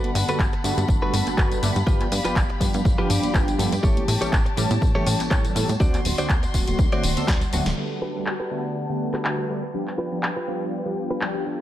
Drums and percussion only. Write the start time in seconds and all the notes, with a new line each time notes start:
0.04 closed hi-hat, tambourine, high conga
0.15 open hi-hat, tambourine
0.28 closed hi-hat, tambourine
0.38 kick, clap, tambourine, high conga
0.52 closed hi-hat, tambourine
0.64 open hi-hat, tambourine
0.78 closed hi-hat, tambourine, high conga
0.88 kick, tambourine
0.90 tambourine
1.01 tambourine
1.14 open hi-hat, tambourine
1.25 clap, closed hi-hat, tambourine, high conga
1.38 kick, clap, tambourine
1.51 closed hi-hat, tambourine, low conga
1.62 open hi-hat, tambourine, high conga
1.76 closed hi-hat, tambourine, low conga
1.86 kick, tambourine
1.88 tambourine
2.00 clap, closed hi-hat, tambourine, high conga
2.12 open hi-hat, tambourine
2.24 closed hi-hat, tambourine
2.35 kick, clap, tambourine, high conga
2.37 tambourine
2.49 closed hi-hat, tambourine
2.61 kick, open hi-hat, tambourine
2.73 closed hi-hat, tambourine, high conga
2.75 tambourine
2.85 kick, tambourine
2.98 tambourine
3.10 open hi-hat, tambourine
3.23 closed hi-hat, tambourine, high conga
3.24 tambourine
3.34 kick, clap, tambourine
3.48 closed hi-hat, tambourine, low conga
3.58 open hi-hat, tambourine, high conga
3.72 closed hi-hat, tambourine, low conga
3.83 kick, tambourine
3.85 tambourine
3.97 closed hi-hat, tambourine, high conga
4.08 open hi-hat, tambourine
4.21 closed hi-hat, tambourine
4.33 kick, clap, tambourine, high conga
4.45 closed hi-hat, tambourine
4.57 open hi-hat, tambourine
4.70 closed hi-hat, tambourine, high conga
4.82 kick, tambourine
4.95 tambourine
5.07 open hi-hat, tambourine
5.20 clap, closed hi-hat, tambourine, high conga
5.31 kick, clap, tambourine
5.45 closed hi-hat, tambourine, low conga
5.56 open hi-hat, tambourine, high conga
5.69 closed hi-hat, tambourine, low conga
5.80 kick, tambourine
5.94 clap, closed hi-hat, tambourine, high conga
6.05 open hi-hat, tambourine
6.18 closed hi-hat, tambourine
6.29 kick, clap, tambourine, high conga
6.43 closed hi-hat, tambourine
6.54 kick, open hi-hat, tambourine
6.67 closed hi-hat, tambourine, high conga
6.79 kick, tambourine
6.92 closed hi-hat, tambourine
7.03 open hi-hat, tambourine
7.17 closed hi-hat, tambourine, high conga
7.27 kick, snare, clap, tambourine
7.29 tambourine
7.41 closed hi-hat, tambourine, low conga
7.53 open hi-hat, tambourine, high conga
7.66 snare, closed hi-hat, tambourine, low conga
7.77 crash
8.26 clap
9.14 clap
9.25 clap
9.87 clap
10.23 clap
11.21 clap